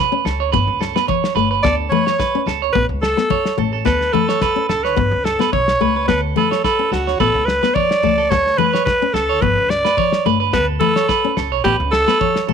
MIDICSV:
0, 0, Header, 1, 8, 480
1, 0, Start_track
1, 0, Tempo, 556070
1, 1415, Time_signature, 4, 2, 24, 8
1, 10819, End_track
2, 0, Start_track
2, 0, Title_t, "Alto saxophone"
2, 0, Program_c, 0, 65
2, 1405, Note_on_c, 0, 74, 102
2, 1515, Note_off_c, 0, 74, 0
2, 1636, Note_on_c, 0, 73, 94
2, 2090, Note_off_c, 0, 73, 0
2, 2354, Note_on_c, 0, 71, 102
2, 2466, Note_off_c, 0, 71, 0
2, 2605, Note_on_c, 0, 69, 94
2, 3054, Note_off_c, 0, 69, 0
2, 3325, Note_on_c, 0, 71, 89
2, 3562, Note_on_c, 0, 69, 84
2, 3575, Note_off_c, 0, 71, 0
2, 4041, Note_off_c, 0, 69, 0
2, 4047, Note_on_c, 0, 69, 77
2, 4170, Note_on_c, 0, 71, 85
2, 4183, Note_off_c, 0, 69, 0
2, 4526, Note_on_c, 0, 69, 86
2, 4538, Note_off_c, 0, 71, 0
2, 4765, Note_off_c, 0, 69, 0
2, 4771, Note_on_c, 0, 73, 92
2, 5218, Note_off_c, 0, 73, 0
2, 5250, Note_on_c, 0, 71, 95
2, 5358, Note_off_c, 0, 71, 0
2, 5500, Note_on_c, 0, 69, 82
2, 5719, Note_off_c, 0, 69, 0
2, 5730, Note_on_c, 0, 69, 89
2, 5954, Note_off_c, 0, 69, 0
2, 5976, Note_on_c, 0, 66, 81
2, 6197, Note_off_c, 0, 66, 0
2, 6214, Note_on_c, 0, 69, 102
2, 6434, Note_on_c, 0, 71, 94
2, 6447, Note_off_c, 0, 69, 0
2, 6685, Note_on_c, 0, 74, 104
2, 6698, Note_off_c, 0, 71, 0
2, 7162, Note_on_c, 0, 73, 107
2, 7175, Note_off_c, 0, 74, 0
2, 7405, Note_on_c, 0, 71, 93
2, 7418, Note_off_c, 0, 73, 0
2, 7632, Note_off_c, 0, 71, 0
2, 7638, Note_on_c, 0, 71, 93
2, 7886, Note_on_c, 0, 69, 85
2, 7899, Note_off_c, 0, 71, 0
2, 8125, Note_on_c, 0, 71, 97
2, 8138, Note_off_c, 0, 69, 0
2, 8370, Note_on_c, 0, 74, 95
2, 8383, Note_off_c, 0, 71, 0
2, 8853, Note_off_c, 0, 74, 0
2, 9091, Note_on_c, 0, 71, 107
2, 9200, Note_off_c, 0, 71, 0
2, 9321, Note_on_c, 0, 69, 93
2, 9775, Note_off_c, 0, 69, 0
2, 10047, Note_on_c, 0, 67, 93
2, 10158, Note_off_c, 0, 67, 0
2, 10285, Note_on_c, 0, 69, 107
2, 10738, Note_off_c, 0, 69, 0
2, 10819, End_track
3, 0, Start_track
3, 0, Title_t, "Clean electric guitar"
3, 0, Program_c, 1, 27
3, 0, Note_on_c, 1, 71, 80
3, 207, Note_off_c, 1, 71, 0
3, 218, Note_on_c, 1, 69, 75
3, 340, Note_off_c, 1, 69, 0
3, 346, Note_on_c, 1, 73, 68
3, 449, Note_off_c, 1, 73, 0
3, 453, Note_on_c, 1, 71, 77
3, 682, Note_off_c, 1, 71, 0
3, 696, Note_on_c, 1, 69, 75
3, 818, Note_off_c, 1, 69, 0
3, 826, Note_on_c, 1, 71, 72
3, 931, Note_off_c, 1, 71, 0
3, 934, Note_on_c, 1, 73, 80
3, 1163, Note_off_c, 1, 73, 0
3, 1170, Note_on_c, 1, 71, 80
3, 1292, Note_off_c, 1, 71, 0
3, 1302, Note_on_c, 1, 71, 66
3, 1409, Note_off_c, 1, 71, 0
3, 1416, Note_on_c, 1, 69, 89
3, 1643, Note_off_c, 1, 69, 0
3, 1657, Note_on_c, 1, 71, 72
3, 1778, Note_off_c, 1, 71, 0
3, 1783, Note_on_c, 1, 73, 73
3, 1889, Note_off_c, 1, 73, 0
3, 1893, Note_on_c, 1, 71, 74
3, 2121, Note_off_c, 1, 71, 0
3, 2134, Note_on_c, 1, 69, 76
3, 2256, Note_off_c, 1, 69, 0
3, 2263, Note_on_c, 1, 73, 73
3, 2368, Note_off_c, 1, 73, 0
3, 2612, Note_on_c, 1, 69, 74
3, 2734, Note_off_c, 1, 69, 0
3, 2853, Note_on_c, 1, 73, 75
3, 3080, Note_off_c, 1, 73, 0
3, 3095, Note_on_c, 1, 69, 79
3, 3208, Note_off_c, 1, 69, 0
3, 3218, Note_on_c, 1, 69, 70
3, 3318, Note_off_c, 1, 69, 0
3, 3329, Note_on_c, 1, 69, 85
3, 3558, Note_off_c, 1, 69, 0
3, 3568, Note_on_c, 1, 71, 73
3, 3692, Note_off_c, 1, 71, 0
3, 3700, Note_on_c, 1, 73, 69
3, 3806, Note_off_c, 1, 73, 0
3, 3816, Note_on_c, 1, 71, 81
3, 4042, Note_off_c, 1, 71, 0
3, 4054, Note_on_c, 1, 69, 74
3, 4175, Note_off_c, 1, 69, 0
3, 4184, Note_on_c, 1, 73, 71
3, 4288, Note_off_c, 1, 73, 0
3, 4536, Note_on_c, 1, 69, 71
3, 4656, Note_off_c, 1, 69, 0
3, 4666, Note_on_c, 1, 71, 69
3, 4769, Note_off_c, 1, 71, 0
3, 4774, Note_on_c, 1, 73, 74
3, 5001, Note_off_c, 1, 73, 0
3, 5019, Note_on_c, 1, 71, 78
3, 5138, Note_off_c, 1, 71, 0
3, 5147, Note_on_c, 1, 71, 70
3, 5249, Note_off_c, 1, 71, 0
3, 5261, Note_on_c, 1, 69, 81
3, 5485, Note_off_c, 1, 69, 0
3, 5502, Note_on_c, 1, 71, 73
3, 5618, Note_off_c, 1, 71, 0
3, 5621, Note_on_c, 1, 73, 74
3, 5727, Note_off_c, 1, 73, 0
3, 5735, Note_on_c, 1, 71, 77
3, 5962, Note_off_c, 1, 71, 0
3, 5972, Note_on_c, 1, 69, 72
3, 6094, Note_off_c, 1, 69, 0
3, 6106, Note_on_c, 1, 73, 73
3, 6209, Note_off_c, 1, 73, 0
3, 6215, Note_on_c, 1, 71, 75
3, 6442, Note_off_c, 1, 71, 0
3, 6584, Note_on_c, 1, 71, 72
3, 6689, Note_off_c, 1, 71, 0
3, 6694, Note_on_c, 1, 73, 76
3, 6922, Note_off_c, 1, 73, 0
3, 6935, Note_on_c, 1, 69, 73
3, 7050, Note_off_c, 1, 69, 0
3, 7060, Note_on_c, 1, 69, 69
3, 7159, Note_off_c, 1, 69, 0
3, 7169, Note_on_c, 1, 69, 88
3, 7399, Note_off_c, 1, 69, 0
3, 7410, Note_on_c, 1, 71, 76
3, 7534, Note_off_c, 1, 71, 0
3, 7540, Note_on_c, 1, 73, 69
3, 7646, Note_off_c, 1, 73, 0
3, 7889, Note_on_c, 1, 69, 76
3, 8014, Note_off_c, 1, 69, 0
3, 8021, Note_on_c, 1, 73, 71
3, 8128, Note_off_c, 1, 73, 0
3, 8498, Note_on_c, 1, 71, 72
3, 8606, Note_off_c, 1, 71, 0
3, 8613, Note_on_c, 1, 73, 75
3, 8842, Note_off_c, 1, 73, 0
3, 8855, Note_on_c, 1, 71, 77
3, 8969, Note_off_c, 1, 71, 0
3, 8979, Note_on_c, 1, 71, 69
3, 9087, Note_off_c, 1, 71, 0
3, 9091, Note_on_c, 1, 69, 82
3, 9321, Note_off_c, 1, 69, 0
3, 9332, Note_on_c, 1, 71, 74
3, 9456, Note_off_c, 1, 71, 0
3, 9462, Note_on_c, 1, 73, 73
3, 9565, Note_off_c, 1, 73, 0
3, 9568, Note_on_c, 1, 71, 79
3, 9800, Note_off_c, 1, 71, 0
3, 9813, Note_on_c, 1, 69, 77
3, 9937, Note_off_c, 1, 69, 0
3, 9943, Note_on_c, 1, 73, 73
3, 10049, Note_off_c, 1, 73, 0
3, 10053, Note_on_c, 1, 71, 82
3, 10283, Note_off_c, 1, 71, 0
3, 10291, Note_on_c, 1, 69, 75
3, 10416, Note_off_c, 1, 69, 0
3, 10425, Note_on_c, 1, 71, 72
3, 10531, Note_off_c, 1, 71, 0
3, 10536, Note_on_c, 1, 73, 71
3, 10765, Note_off_c, 1, 73, 0
3, 10776, Note_on_c, 1, 69, 79
3, 10819, Note_off_c, 1, 69, 0
3, 10819, End_track
4, 0, Start_track
4, 0, Title_t, "Nylon-string guitar"
4, 0, Program_c, 2, 24
4, 104, Note_on_c, 2, 61, 73
4, 288, Note_off_c, 2, 61, 0
4, 459, Note_on_c, 2, 59, 84
4, 641, Note_off_c, 2, 59, 0
4, 827, Note_on_c, 2, 59, 69
4, 1009, Note_off_c, 2, 59, 0
4, 1178, Note_on_c, 2, 57, 79
4, 1360, Note_off_c, 2, 57, 0
4, 1418, Note_on_c, 2, 59, 90
4, 1600, Note_off_c, 2, 59, 0
4, 1659, Note_on_c, 2, 57, 72
4, 1840, Note_off_c, 2, 57, 0
4, 2028, Note_on_c, 2, 61, 71
4, 2209, Note_off_c, 2, 61, 0
4, 2377, Note_on_c, 2, 59, 80
4, 2559, Note_off_c, 2, 59, 0
4, 2739, Note_on_c, 2, 59, 69
4, 2923, Note_off_c, 2, 59, 0
4, 3087, Note_on_c, 2, 57, 73
4, 3272, Note_off_c, 2, 57, 0
4, 3322, Note_on_c, 2, 59, 83
4, 3509, Note_off_c, 2, 59, 0
4, 3567, Note_on_c, 2, 57, 74
4, 3752, Note_off_c, 2, 57, 0
4, 3935, Note_on_c, 2, 61, 72
4, 4120, Note_off_c, 2, 61, 0
4, 4285, Note_on_c, 2, 59, 78
4, 4471, Note_off_c, 2, 59, 0
4, 4654, Note_on_c, 2, 59, 72
4, 4840, Note_off_c, 2, 59, 0
4, 5012, Note_on_c, 2, 57, 72
4, 5196, Note_off_c, 2, 57, 0
4, 5248, Note_on_c, 2, 59, 80
4, 5433, Note_off_c, 2, 59, 0
4, 5492, Note_on_c, 2, 57, 71
4, 5676, Note_off_c, 2, 57, 0
4, 5861, Note_on_c, 2, 61, 73
4, 6045, Note_off_c, 2, 61, 0
4, 6218, Note_on_c, 2, 59, 83
4, 6399, Note_off_c, 2, 59, 0
4, 6584, Note_on_c, 2, 59, 70
4, 6767, Note_off_c, 2, 59, 0
4, 6937, Note_on_c, 2, 57, 76
4, 7119, Note_off_c, 2, 57, 0
4, 7417, Note_on_c, 2, 57, 69
4, 7599, Note_off_c, 2, 57, 0
4, 7787, Note_on_c, 2, 61, 73
4, 7969, Note_off_c, 2, 61, 0
4, 8139, Note_on_c, 2, 59, 79
4, 8321, Note_off_c, 2, 59, 0
4, 8857, Note_on_c, 2, 57, 78
4, 9040, Note_off_c, 2, 57, 0
4, 9094, Note_on_c, 2, 59, 88
4, 9278, Note_off_c, 2, 59, 0
4, 9333, Note_on_c, 2, 57, 69
4, 9518, Note_off_c, 2, 57, 0
4, 9707, Note_on_c, 2, 61, 76
4, 9890, Note_off_c, 2, 61, 0
4, 10061, Note_on_c, 2, 59, 86
4, 10243, Note_off_c, 2, 59, 0
4, 10425, Note_on_c, 2, 59, 75
4, 10608, Note_off_c, 2, 59, 0
4, 10781, Note_on_c, 2, 57, 73
4, 10819, Note_off_c, 2, 57, 0
4, 10819, End_track
5, 0, Start_track
5, 0, Title_t, "Upright bass"
5, 0, Program_c, 3, 32
5, 215, Note_on_c, 3, 37, 76
5, 344, Note_off_c, 3, 37, 0
5, 344, Note_on_c, 3, 38, 80
5, 437, Note_off_c, 3, 38, 0
5, 462, Note_on_c, 3, 31, 96
5, 567, Note_off_c, 3, 31, 0
5, 582, Note_on_c, 3, 37, 82
5, 782, Note_off_c, 3, 37, 0
5, 1170, Note_on_c, 3, 31, 85
5, 1371, Note_off_c, 3, 31, 0
5, 1419, Note_on_c, 3, 38, 105
5, 1616, Note_off_c, 3, 38, 0
5, 2126, Note_on_c, 3, 37, 80
5, 2256, Note_off_c, 3, 37, 0
5, 2256, Note_on_c, 3, 38, 82
5, 2351, Note_off_c, 3, 38, 0
5, 2376, Note_on_c, 3, 33, 98
5, 2481, Note_off_c, 3, 33, 0
5, 2494, Note_on_c, 3, 37, 89
5, 2697, Note_off_c, 3, 37, 0
5, 3086, Note_on_c, 3, 33, 84
5, 3288, Note_off_c, 3, 33, 0
5, 3332, Note_on_c, 3, 38, 97
5, 3531, Note_off_c, 3, 38, 0
5, 4051, Note_on_c, 3, 37, 84
5, 4176, Note_off_c, 3, 37, 0
5, 4176, Note_on_c, 3, 38, 77
5, 4270, Note_off_c, 3, 38, 0
5, 4295, Note_on_c, 3, 31, 97
5, 4400, Note_off_c, 3, 31, 0
5, 4413, Note_on_c, 3, 37, 88
5, 4616, Note_off_c, 3, 37, 0
5, 4777, Note_on_c, 3, 35, 80
5, 4990, Note_off_c, 3, 35, 0
5, 5014, Note_on_c, 3, 37, 76
5, 5229, Note_off_c, 3, 37, 0
5, 5253, Note_on_c, 3, 38, 104
5, 5452, Note_off_c, 3, 38, 0
5, 5970, Note_on_c, 3, 37, 77
5, 6101, Note_off_c, 3, 37, 0
5, 6101, Note_on_c, 3, 38, 79
5, 6193, Note_off_c, 3, 38, 0
5, 6216, Note_on_c, 3, 33, 97
5, 6321, Note_off_c, 3, 33, 0
5, 6343, Note_on_c, 3, 37, 94
5, 6542, Note_off_c, 3, 37, 0
5, 6934, Note_on_c, 3, 37, 86
5, 7133, Note_off_c, 3, 37, 0
5, 7180, Note_on_c, 3, 38, 104
5, 7377, Note_off_c, 3, 38, 0
5, 7888, Note_on_c, 3, 37, 84
5, 8020, Note_off_c, 3, 37, 0
5, 8020, Note_on_c, 3, 38, 79
5, 8114, Note_off_c, 3, 38, 0
5, 8134, Note_on_c, 3, 31, 96
5, 8241, Note_off_c, 3, 31, 0
5, 8258, Note_on_c, 3, 37, 89
5, 8460, Note_off_c, 3, 37, 0
5, 8854, Note_on_c, 3, 31, 84
5, 9054, Note_off_c, 3, 31, 0
5, 9093, Note_on_c, 3, 38, 105
5, 9293, Note_off_c, 3, 38, 0
5, 9814, Note_on_c, 3, 37, 83
5, 9944, Note_off_c, 3, 37, 0
5, 9944, Note_on_c, 3, 35, 82
5, 10037, Note_off_c, 3, 35, 0
5, 10055, Note_on_c, 3, 33, 97
5, 10163, Note_off_c, 3, 33, 0
5, 10185, Note_on_c, 3, 37, 96
5, 10384, Note_off_c, 3, 37, 0
5, 10777, Note_on_c, 3, 33, 85
5, 10819, Note_off_c, 3, 33, 0
5, 10819, End_track
6, 0, Start_track
6, 0, Title_t, "Muted clean electric guitar strokes"
6, 2371, Note_on_c, 9, 29, 77
6, 2458, Note_off_c, 9, 29, 0
6, 2738, Note_on_c, 9, 29, 65
6, 2824, Note_off_c, 9, 29, 0
6, 4294, Note_on_c, 9, 29, 78
6, 4380, Note_off_c, 9, 29, 0
6, 6454, Note_on_c, 9, 29, 72
6, 6541, Note_off_c, 9, 29, 0
6, 7649, Note_on_c, 9, 29, 80
6, 7736, Note_off_c, 9, 29, 0
6, 8132, Note_on_c, 9, 29, 79
6, 8218, Note_off_c, 9, 29, 0
6, 10819, End_track
7, 0, Start_track
7, 0, Title_t, "Muted nylon-string guitar strokes"
7, 7179, Note_on_c, 9, 29, 88
7, 7265, Note_off_c, 9, 29, 0
7, 8512, Note_on_c, 9, 29, 71
7, 8598, Note_off_c, 9, 29, 0
7, 10819, End_track
8, 0, Start_track
8, 0, Title_t, "Drums"
8, 224, Note_on_c, 9, 38, 66
8, 310, Note_off_c, 9, 38, 0
8, 463, Note_on_c, 9, 36, 87
8, 466, Note_on_c, 9, 62, 26
8, 466, Note_on_c, 9, 63, 68
8, 550, Note_off_c, 9, 36, 0
8, 552, Note_off_c, 9, 62, 0
8, 552, Note_off_c, 9, 63, 0
8, 704, Note_on_c, 9, 38, 67
8, 790, Note_off_c, 9, 38, 0
8, 830, Note_on_c, 9, 38, 69
8, 916, Note_off_c, 9, 38, 0
8, 936, Note_on_c, 9, 63, 69
8, 942, Note_on_c, 9, 36, 90
8, 1022, Note_off_c, 9, 63, 0
8, 1028, Note_off_c, 9, 36, 0
8, 1069, Note_on_c, 9, 38, 69
8, 1156, Note_off_c, 9, 38, 0
8, 1179, Note_on_c, 9, 62, 29
8, 1265, Note_off_c, 9, 62, 0
8, 1414, Note_on_c, 9, 62, 30
8, 1421, Note_on_c, 9, 36, 86
8, 1422, Note_on_c, 9, 38, 72
8, 1501, Note_off_c, 9, 62, 0
8, 1507, Note_off_c, 9, 36, 0
8, 1508, Note_off_c, 9, 38, 0
8, 1655, Note_on_c, 9, 62, 29
8, 1655, Note_on_c, 9, 63, 91
8, 1741, Note_off_c, 9, 62, 0
8, 1741, Note_off_c, 9, 63, 0
8, 1786, Note_on_c, 9, 38, 68
8, 1872, Note_off_c, 9, 38, 0
8, 1895, Note_on_c, 9, 38, 72
8, 1897, Note_on_c, 9, 36, 89
8, 1981, Note_off_c, 9, 38, 0
8, 1983, Note_off_c, 9, 36, 0
8, 2136, Note_on_c, 9, 38, 65
8, 2222, Note_off_c, 9, 38, 0
8, 2373, Note_on_c, 9, 62, 29
8, 2377, Note_on_c, 9, 36, 84
8, 2459, Note_off_c, 9, 62, 0
8, 2463, Note_off_c, 9, 36, 0
8, 2615, Note_on_c, 9, 38, 74
8, 2701, Note_off_c, 9, 38, 0
8, 2741, Note_on_c, 9, 38, 65
8, 2827, Note_off_c, 9, 38, 0
8, 2850, Note_on_c, 9, 63, 77
8, 2854, Note_on_c, 9, 36, 87
8, 2937, Note_off_c, 9, 63, 0
8, 2940, Note_off_c, 9, 36, 0
8, 2982, Note_on_c, 9, 38, 68
8, 3068, Note_off_c, 9, 38, 0
8, 3093, Note_on_c, 9, 62, 30
8, 3093, Note_on_c, 9, 63, 70
8, 3179, Note_off_c, 9, 62, 0
8, 3179, Note_off_c, 9, 63, 0
8, 3332, Note_on_c, 9, 38, 66
8, 3334, Note_on_c, 9, 36, 87
8, 3335, Note_on_c, 9, 62, 32
8, 3418, Note_off_c, 9, 38, 0
8, 3420, Note_off_c, 9, 36, 0
8, 3421, Note_off_c, 9, 62, 0
8, 3462, Note_on_c, 9, 38, 25
8, 3549, Note_off_c, 9, 38, 0
8, 3577, Note_on_c, 9, 62, 31
8, 3577, Note_on_c, 9, 63, 91
8, 3664, Note_off_c, 9, 62, 0
8, 3664, Note_off_c, 9, 63, 0
8, 3702, Note_on_c, 9, 38, 64
8, 3789, Note_off_c, 9, 38, 0
8, 3809, Note_on_c, 9, 38, 69
8, 3813, Note_on_c, 9, 36, 89
8, 3820, Note_on_c, 9, 64, 66
8, 3895, Note_off_c, 9, 38, 0
8, 3899, Note_off_c, 9, 36, 0
8, 3906, Note_off_c, 9, 64, 0
8, 4052, Note_on_c, 9, 38, 69
8, 4138, Note_off_c, 9, 38, 0
8, 4182, Note_on_c, 9, 38, 25
8, 4268, Note_off_c, 9, 38, 0
8, 4294, Note_on_c, 9, 36, 86
8, 4297, Note_on_c, 9, 62, 24
8, 4297, Note_on_c, 9, 63, 64
8, 4380, Note_off_c, 9, 36, 0
8, 4383, Note_off_c, 9, 62, 0
8, 4383, Note_off_c, 9, 63, 0
8, 4535, Note_on_c, 9, 38, 66
8, 4622, Note_off_c, 9, 38, 0
8, 4665, Note_on_c, 9, 38, 68
8, 4751, Note_off_c, 9, 38, 0
8, 4774, Note_on_c, 9, 63, 58
8, 4775, Note_on_c, 9, 36, 84
8, 4860, Note_off_c, 9, 63, 0
8, 4861, Note_off_c, 9, 36, 0
8, 4902, Note_on_c, 9, 38, 69
8, 4988, Note_off_c, 9, 38, 0
8, 5011, Note_on_c, 9, 62, 23
8, 5097, Note_off_c, 9, 62, 0
8, 5254, Note_on_c, 9, 62, 26
8, 5255, Note_on_c, 9, 38, 71
8, 5256, Note_on_c, 9, 36, 88
8, 5340, Note_off_c, 9, 62, 0
8, 5341, Note_off_c, 9, 38, 0
8, 5342, Note_off_c, 9, 36, 0
8, 5489, Note_on_c, 9, 62, 25
8, 5489, Note_on_c, 9, 63, 80
8, 5576, Note_off_c, 9, 62, 0
8, 5576, Note_off_c, 9, 63, 0
8, 5627, Note_on_c, 9, 38, 65
8, 5714, Note_off_c, 9, 38, 0
8, 5735, Note_on_c, 9, 38, 67
8, 5737, Note_on_c, 9, 36, 88
8, 5822, Note_off_c, 9, 38, 0
8, 5823, Note_off_c, 9, 36, 0
8, 5977, Note_on_c, 9, 38, 65
8, 6064, Note_off_c, 9, 38, 0
8, 6108, Note_on_c, 9, 38, 27
8, 6195, Note_off_c, 9, 38, 0
8, 6216, Note_on_c, 9, 62, 24
8, 6217, Note_on_c, 9, 36, 79
8, 6302, Note_off_c, 9, 62, 0
8, 6303, Note_off_c, 9, 36, 0
8, 6458, Note_on_c, 9, 38, 72
8, 6545, Note_off_c, 9, 38, 0
8, 6586, Note_on_c, 9, 38, 67
8, 6673, Note_off_c, 9, 38, 0
8, 6692, Note_on_c, 9, 63, 66
8, 6698, Note_on_c, 9, 36, 92
8, 6779, Note_off_c, 9, 63, 0
8, 6784, Note_off_c, 9, 36, 0
8, 6827, Note_on_c, 9, 38, 70
8, 6913, Note_off_c, 9, 38, 0
8, 6932, Note_on_c, 9, 62, 25
8, 6932, Note_on_c, 9, 63, 58
8, 7018, Note_off_c, 9, 62, 0
8, 7018, Note_off_c, 9, 63, 0
8, 7173, Note_on_c, 9, 62, 26
8, 7179, Note_on_c, 9, 36, 86
8, 7181, Note_on_c, 9, 38, 69
8, 7260, Note_off_c, 9, 62, 0
8, 7265, Note_off_c, 9, 36, 0
8, 7268, Note_off_c, 9, 38, 0
8, 7308, Note_on_c, 9, 38, 26
8, 7394, Note_off_c, 9, 38, 0
8, 7410, Note_on_c, 9, 62, 26
8, 7410, Note_on_c, 9, 63, 80
8, 7496, Note_off_c, 9, 62, 0
8, 7496, Note_off_c, 9, 63, 0
8, 7548, Note_on_c, 9, 38, 66
8, 7635, Note_off_c, 9, 38, 0
8, 7649, Note_on_c, 9, 64, 60
8, 7657, Note_on_c, 9, 36, 90
8, 7658, Note_on_c, 9, 38, 68
8, 7736, Note_off_c, 9, 64, 0
8, 7743, Note_off_c, 9, 36, 0
8, 7744, Note_off_c, 9, 38, 0
8, 7897, Note_on_c, 9, 38, 62
8, 7983, Note_off_c, 9, 38, 0
8, 8126, Note_on_c, 9, 62, 25
8, 8126, Note_on_c, 9, 63, 65
8, 8135, Note_on_c, 9, 36, 83
8, 8213, Note_off_c, 9, 62, 0
8, 8213, Note_off_c, 9, 63, 0
8, 8221, Note_off_c, 9, 36, 0
8, 8374, Note_on_c, 9, 38, 71
8, 8460, Note_off_c, 9, 38, 0
8, 8503, Note_on_c, 9, 38, 67
8, 8589, Note_off_c, 9, 38, 0
8, 8607, Note_on_c, 9, 63, 60
8, 8615, Note_on_c, 9, 36, 86
8, 8694, Note_off_c, 9, 63, 0
8, 8701, Note_off_c, 9, 36, 0
8, 8740, Note_on_c, 9, 38, 71
8, 8826, Note_off_c, 9, 38, 0
8, 8849, Note_on_c, 9, 62, 25
8, 8936, Note_off_c, 9, 62, 0
8, 9084, Note_on_c, 9, 62, 30
8, 9091, Note_on_c, 9, 38, 69
8, 9094, Note_on_c, 9, 36, 90
8, 9170, Note_off_c, 9, 62, 0
8, 9177, Note_off_c, 9, 38, 0
8, 9181, Note_off_c, 9, 36, 0
8, 9328, Note_on_c, 9, 62, 28
8, 9328, Note_on_c, 9, 63, 82
8, 9415, Note_off_c, 9, 62, 0
8, 9415, Note_off_c, 9, 63, 0
8, 9461, Note_on_c, 9, 38, 63
8, 9548, Note_off_c, 9, 38, 0
8, 9574, Note_on_c, 9, 38, 65
8, 9575, Note_on_c, 9, 36, 89
8, 9660, Note_off_c, 9, 38, 0
8, 9662, Note_off_c, 9, 36, 0
8, 9814, Note_on_c, 9, 38, 63
8, 9901, Note_off_c, 9, 38, 0
8, 10054, Note_on_c, 9, 62, 27
8, 10057, Note_on_c, 9, 36, 89
8, 10140, Note_off_c, 9, 62, 0
8, 10143, Note_off_c, 9, 36, 0
8, 10297, Note_on_c, 9, 38, 76
8, 10384, Note_off_c, 9, 38, 0
8, 10427, Note_on_c, 9, 38, 66
8, 10513, Note_off_c, 9, 38, 0
8, 10537, Note_on_c, 9, 63, 70
8, 10540, Note_on_c, 9, 36, 87
8, 10623, Note_off_c, 9, 63, 0
8, 10626, Note_off_c, 9, 36, 0
8, 10667, Note_on_c, 9, 38, 68
8, 10753, Note_off_c, 9, 38, 0
8, 10779, Note_on_c, 9, 63, 72
8, 10819, Note_off_c, 9, 63, 0
8, 10819, End_track
0, 0, End_of_file